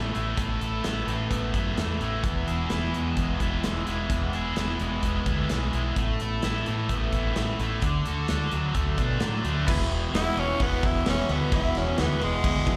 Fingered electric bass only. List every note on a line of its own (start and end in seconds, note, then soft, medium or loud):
0.00 0.11 A1 medium
0.16 0.35 A1 medium
0.38 0.57 A1 medium
0.61 0.80 A1 medium
0.85 1.04 A1 medium
1.07 1.27 A1 medium
1.31 1.51 A1 medium
1.55 1.74 F#2 medium
1.77 1.96 E2 medium
2.00 2.20 A1 medium
2.24 2.43 E1 medium
2.47 2.66 E1 medium
2.70 2.89 E1 medium
2.94 3.13 E2 medium
3.17 3.36 E1 medium
3.40 3.60 E1 medium
3.64 3.83 E1 medium
3.87 4.06 E1 medium
4.10 4.29 E1 medium
4.34 4.53 E1 medium
4.57 4.76 E1 medium
4.80 4.99 E1 medium
5.03 5.22 E1 medium
5.27 5.46 D2 medium
5.51 5.70 B1 medium
5.74 5.93 B1 medium
5.96 6.15 A1 medium
6.22 6.40 A1 medium
6.44 6.63 A1 medium
6.69 6.87 A2 medium
6.90 7.09 A1 medium
7.13 7.32 A1 medium
7.37 7.56 A1 medium
7.59 7.78 A1 medium
7.83 8.02 D2 medium
8.06 8.25 D2 medium
8.30 8.49 D2 medium
8.53 8.71 D2 medium
8.75 8.94 D2 medium
8.98 9.17 B2 medium
9.22 9.41 A2 medium
9.44 9.63 D2 medium
9.68 9.83 E1 medium
9.91 10.06 E1 medium
10.13 10.28 E1 medium
10.37 10.51 E1 medium
10.61 10.75 E1 medium
10.84 10.98 E1 medium
11.06 11.21 E1 medium
11.29 11.44 D2 loud
11.53 11.67 E1 loud
11.76 11.90 E1 medium
11.99 12.14 D2 loud
12.23 12.37 E1 loud
12.44 12.59 D2 loud
12.67 12.76 F#1 medium